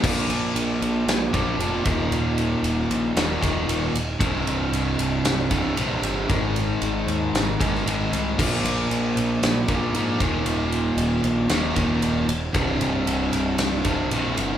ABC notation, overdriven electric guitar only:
X:1
M:4/4
L:1/8
Q:1/4=115
K:Bbmix
V:1 name="Overdriven electric guitar" clef=bass
[B,,F,B,]4- [B,,F,B,] [B,,F,B,] [B,,F,B,] [E,,B,,E,]- | [E,,B,,E,]4 [E,,B,,E,] [E,,B,,E,]2 z | [C,,G,,C,]4- [C,,G,,C,] [C,,G,,C,] [C,,G,,C,]2 | [A,,E,A,]4- [A,,E,A,] [A,,E,A,] [A,,E,A,]2 |
[B,,F,B,]4- [B,,F,B,] [B,,F,B,] [B,,F,B,] [E,,B,,E,]- | [E,,B,,E,]4 [E,,B,,E,] [E,,B,,E,]2 z | [C,,G,,C,]4- [C,,G,,C,] [C,,G,,C,] [C,,G,,C,]2 |]